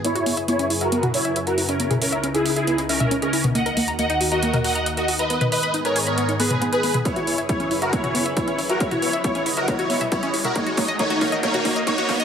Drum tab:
HH |xxoxxxoxxxoxxxox|xxoxxxoxxxoxxxox|xxoxxxoxxxoxxxox|xxoxxxoxxxoxxxox|
T2 |---------o------|-o---------o---o|---------o------|-o---------o---o|
BD |----------------|----------------|----------------|----------------|

HH |xxoxxxoxxxoxxxox|xxoxxxoxxxoxxxox|xxoxxxoxxxoxxxox|
T2 |---------o------|-o---------o---o|---------o------|
BD |o---o---o---o---|o---o---o---o---|o-o-o-o-o-o-o-o-|